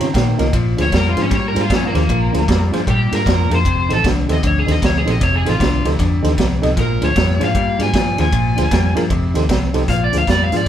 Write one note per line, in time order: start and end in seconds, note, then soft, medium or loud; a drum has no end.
0.00 0.11 C#3 medium
0.00 0.12 D#3 medium
0.00 0.12 C4 medium
0.00 0.07 G4 medium
0.00 0.08 C#5 medium
0.00 0.13 A#5 medium
0.00 snare soft
0.00 ride medium
0.14 0.34 A#2 medium
0.14 0.37 D#3 medium
0.14 0.37 A#3 medium
0.14 0.37 G5 medium
0.14 kick medium
0.14 snare loud
0.14 ride medium
0.38 0.50 C2 medium
0.38 0.52 D#3 medium
0.38 0.53 A#3 medium
0.38 0.46 C#4 medium
0.38 0.46 F4 medium
0.38 0.46 G4 medium
0.38 0.46 A#4 medium
0.38 0.52 D#5 medium
0.38 snare soft
0.38 ride medium
0.53 0.73 A#1 medium
0.53 0.90 A#2 medium
0.53 0.90 F3 medium
0.53 kick medium
0.53 ride medium
0.77 0.89 D2 medium
0.77 0.85 D4 medium
0.77 0.85 F4 medium
0.77 0.85 G#4 medium
0.77 0.86 C5 medium
0.77 snare soft
0.77 ride medium
0.82 0.93 C#5 medium
0.92 1.12 F2 medium
0.92 1.15 A#2 medium
0.92 1.15 G3 medium
0.92 1.07 A#4 medium
0.92 kick medium
0.92 snare loud
0.92 ride medium
1.09 1.20 F4 medium
1.16 1.29 G#2 medium
1.16 1.29 A#2 medium
1.16 1.30 F3 medium
1.16 1.24 D4 medium
1.16 1.24 F4 medium
1.16 1.24 G#4 medium
1.16 1.25 C5 medium
1.16 snare soft
1.16 ride medium
1.22 1.33 C#4 medium
1.30 1.51 G2 medium
1.30 1.67 A#2 medium
1.30 1.67 G3 medium
1.30 kick medium
1.30 snare soft
1.30 ride medium
1.35 1.46 C#5 medium
1.48 1.59 A#4 medium
1.55 1.67 G#2 medium
1.55 1.62 D4 medium
1.55 1.63 F4 medium
1.55 1.63 G#4 medium
1.55 1.63 C5 medium
1.55 snare soft
1.55 ride medium
1.61 1.72 F4 medium
1.70 1.90 G2 medium
1.70 1.92 A#2 medium
1.70 1.93 F3 medium
1.70 kick medium
1.70 snare loud
1.70 ride medium
1.75 1.85 C#4 medium
1.87 2.61 A#3 medium
1.93 2.06 D#2 medium
1.93 2.08 A#2 medium
1.93 2.08 F3 medium
1.93 2.01 D4 medium
1.93 2.02 F4 medium
1.93 2.02 G#4 medium
1.93 2.02 C5 medium
1.93 snare soft
1.93 ride medium
2.09 2.29 A#1 medium
2.09 2.45 A#2 medium
2.09 2.46 F3 medium
2.09 kick medium
2.09 ride medium
2.33 2.45 D2 medium
2.33 2.40 D4 medium
2.33 2.41 F4 medium
2.33 2.41 G#4 medium
2.33 2.41 C5 medium
2.33 snare soft
2.33 ride medium
2.48 2.68 F2 medium
2.48 2.71 A#2 medium
2.48 2.71 G3 medium
2.48 kick medium
2.48 snare loud
2.48 ride medium
2.72 2.84 G2 medium
2.72 2.86 A#2 medium
2.72 2.86 F3 medium
2.72 2.80 D4 medium
2.72 2.80 F4 medium
2.72 2.80 G#4 medium
2.72 2.81 C5 medium
2.72 snare soft
2.72 ride medium
2.87 3.23 A#2 medium
2.87 3.07 A#2 medium
2.87 3.24 G3 medium
2.87 3.13 G4 medium
2.87 kick medium
2.87 ride medium
3.11 3.23 G#2 medium
3.11 3.19 D4 medium
3.11 3.19 F4 medium
3.11 3.20 G#4 medium
3.11 3.20 A#4 medium
3.11 3.51 A#4 medium
3.11 snare soft
3.11 ride medium
3.26 3.46 F2 medium
3.26 3.49 A#2 medium
3.26 3.49 F3 medium
3.26 kick medium
3.26 snare loud
3.26 ride medium
3.50 3.66 F2 medium
3.50 3.64 A#2 medium
3.50 3.64 F3 medium
3.50 3.57 D4 medium
3.50 3.58 F4 medium
3.50 3.58 G#4 medium
3.50 3.58 A#4 medium
3.50 snare soft
3.50 ride medium
3.55 3.91 C5 medium
3.65 3.85 F1 medium
3.65 4.01 F2 medium
3.65 4.02 C3 medium
3.65 kick medium
3.65 ride medium
3.89 4.01 A1 medium
3.89 3.97 D#4 medium
3.89 3.97 G4 medium
3.89 3.97 A4 medium
3.89 3.98 C5 medium
3.89 snare soft
3.89 ride medium
3.93 4.05 A4 medium
4.04 4.24 C2 medium
4.04 4.27 F2 medium
4.04 4.27 D3 medium
4.04 kick medium
4.04 snare loud
4.04 ride medium
4.28 4.40 D#2 medium
4.28 4.41 F2 medium
4.28 4.42 C3 medium
4.28 4.36 D#4 medium
4.28 4.36 G4 medium
4.28 4.36 A4 medium
4.28 4.37 C5 medium
4.28 snare soft
4.28 ride medium
4.33 4.44 D#5 medium
4.42 4.63 D2 medium
4.42 4.79 F2 medium
4.42 4.79 D3 medium
4.42 kick medium
4.42 ride medium
4.47 4.58 C#5 medium
4.59 4.70 G#4 medium
4.66 4.79 D#2 medium
4.66 4.74 D#4 medium
4.66 4.75 G4 medium
4.66 4.75 A4 medium
4.66 4.75 C5 medium
4.66 snare soft
4.66 ride medium
4.72 4.83 D#5 medium
4.82 5.02 D2 medium
4.82 5.04 F2 medium
4.82 5.05 C3 medium
4.82 4.97 C#5 medium
4.82 kick medium
4.82 snare loud
4.82 ride medium
4.98 5.09 G#4 medium
5.05 5.18 A#1 medium
5.05 5.19 F2 medium
5.05 5.20 C3 medium
5.05 5.13 D#4 medium
5.05 5.14 G4 medium
5.05 5.14 A4 medium
5.05 5.14 C5 medium
5.05 snare soft
5.05 ride medium
5.11 5.22 D#5 medium
5.21 5.41 F1 medium
5.21 5.57 F2 medium
5.21 5.57 C3 medium
5.21 5.35 C#5 medium
5.21 kick medium
5.21 snare soft
5.21 ride medium
5.36 5.48 G#4 medium
5.45 5.57 A1 medium
5.45 5.53 D#4 medium
5.45 5.86 F4 medium
5.45 5.53 G4 medium
5.45 5.53 A4 medium
5.45 5.54 C5 medium
5.45 snare soft
5.45 ride medium
5.59 5.80 C2 medium
5.59 5.82 F2 medium
5.59 5.82 D3 medium
5.59 kick medium
5.59 snare loud
5.59 ride medium
5.85 5.96 D2 medium
5.85 5.98 F2 medium
5.85 5.98 C3 medium
5.85 5.92 D#4 medium
5.85 5.92 G4 medium
5.85 5.92 A4 medium
5.85 5.93 C5 medium
5.85 snare soft
5.85 ride medium
5.99 6.35 F2 medium
5.99 6.19 F2 medium
5.99 6.35 D3 medium
5.99 kick medium
5.99 snare soft
5.99 ride medium
6.23 6.35 D#2 medium
6.23 6.30 D#4 medium
6.23 6.30 G4 medium
6.23 6.31 A4 medium
6.23 6.31 C5 medium
6.23 snare soft
6.23 ride medium
6.37 6.58 C2 medium
6.37 6.60 F2 medium
6.37 6.60 C3 medium
6.37 kick medium
6.37 snare loud
6.37 ride medium
6.62 6.74 C2 medium
6.62 6.75 F2 medium
6.62 6.76 C3 medium
6.62 6.69 D#4 medium
6.62 6.70 G4 medium
6.62 6.70 A4 medium
6.62 6.70 D#5 medium
6.62 snare soft
6.62 ride medium
6.76 6.97 A#1 medium
6.76 7.13 A#2 medium
6.76 7.13 F3 medium
6.76 kick medium
6.76 snare soft
6.76 ride medium
6.80 7.03 A#4 medium
7.02 7.13 D2 medium
7.02 7.09 D4 medium
7.02 7.09 F4 medium
7.02 7.09 G#4 medium
7.02 7.10 C5 medium
7.02 7.41 C#5 medium
7.02 snare soft
7.02 ride medium
7.15 7.36 F2 medium
7.15 7.38 A#2 medium
7.15 7.39 G3 medium
7.15 kick medium
7.15 snare loud
7.15 ride medium
7.39 7.52 G#2 medium
7.39 7.53 A#2 medium
7.39 7.54 F3 medium
7.39 7.47 D4 medium
7.39 7.48 F4 medium
7.39 7.48 G#4 medium
7.39 7.48 C5 medium
7.39 snare soft
7.39 ride medium
7.44 7.80 F5 medium
7.55 7.75 G2 medium
7.55 7.91 A#2 medium
7.55 7.91 G3 medium
7.55 kick medium
7.55 ride medium
7.79 7.91 G#2 medium
7.79 7.86 D4 medium
7.79 7.87 F4 medium
7.79 7.87 G#4 medium
7.79 7.87 D5 medium
7.79 8.19 G#5 medium
7.79 snare soft
7.79 ride medium
7.93 8.14 G2 medium
7.93 8.16 A#2 medium
7.93 8.17 F3 medium
7.93 kick medium
7.93 snare loud
7.93 ride medium
8.18 8.30 D#2 medium
8.18 8.31 A#2 medium
8.18 8.32 F3 medium
8.18 8.25 D4 medium
8.18 8.26 F4 medium
8.18 8.26 G#4 medium
8.18 8.27 C5 medium
8.18 8.96 G#5 loud
8.18 snare soft
8.18 ride medium
8.32 8.53 A#1 medium
8.32 8.69 A#2 medium
8.32 8.69 F3 medium
8.32 kick medium
8.32 ride medium
8.56 8.69 D2 medium
8.56 8.64 D4 medium
8.56 8.65 F4 medium
8.56 8.65 G#4 medium
8.56 8.65 C5 medium
8.56 snare soft
8.56 ride medium
8.71 8.92 F2 medium
8.71 8.94 A#2 medium
8.71 8.94 G3 medium
8.71 kick medium
8.71 snare loud
8.71 ride medium
8.95 9.08 G2 medium
8.95 9.09 A#2 medium
8.95 9.10 F3 medium
8.95 9.03 D4 medium
8.95 9.03 F4 medium
8.95 9.04 G#4 medium
8.95 9.04 A#4 medium
8.95 snare soft
8.95 ride medium
9.10 9.30 F1 medium
9.10 9.47 F2 medium
9.10 9.47 C3 medium
9.10 kick medium
9.10 ride medium
9.34 9.47 D#2 medium
9.34 9.42 D#4 medium
9.34 9.43 G4 medium
9.34 9.43 A4 medium
9.34 9.43 C5 medium
9.34 snare soft
9.34 ride medium
9.49 9.69 C2 medium
9.49 9.72 F2 medium
9.49 9.72 C3 medium
9.49 kick medium
9.49 snare loud
9.49 ride medium
9.74 9.86 C2 medium
9.74 9.87 F2 medium
9.74 9.88 C3 medium
9.74 9.81 D#4 medium
9.74 9.81 G4 medium
9.74 9.82 A4 medium
9.74 9.82 C5 medium
9.74 snare soft
9.74 ride medium
9.88 10.08 A#1 medium
9.88 10.25 A#2 medium
9.88 10.25 F3 medium
9.88 10.02 F5 medium
9.88 kick medium
9.88 snare soft
9.88 closed hi-hat medium
10.04 10.16 D5 medium
10.12 10.25 D2 medium
10.12 10.20 D4 medium
10.12 10.20 F4 medium
10.12 10.21 G#4 medium
10.12 10.21 C5 medium
10.12 snare soft
10.12 closed hi-hat medium
10.18 10.29 F5 medium
10.27 10.48 F2 medium
10.27 10.50 A#2 medium
10.27 10.50 G3 medium
10.27 10.42 D5 medium
10.27 kick medium
10.27 snare loud
10.27 closed hi-hat medium
10.43 10.55 F5 medium
10.52 10.64 G#2 medium
10.52 10.65 A#2 medium
10.52 10.66 F3 medium
10.52 10.59 D4 medium
10.52 10.60 F4 medium
10.52 10.60 G#4 medium
10.52 10.61 C5 medium
10.52 snare soft
10.52 closed hi-hat medium
10.57 10.68 D5 medium